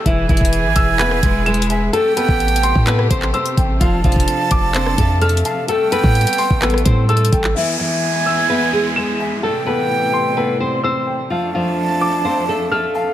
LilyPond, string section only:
\new Staff \with { instrumentName = "String section" } { \clef bass \time 4/4 \key a \minor \tempo 4 = 128 << { <e gis' b'>1 | <c g'>1 | <f d' a'>1 | a1 |
<e, gis b>1 | <a, c g>1 | <f, a d'>1 | } \\ { e'1 | a1 | r1 | g1 |
e1~ | e1 | f1 | } >> }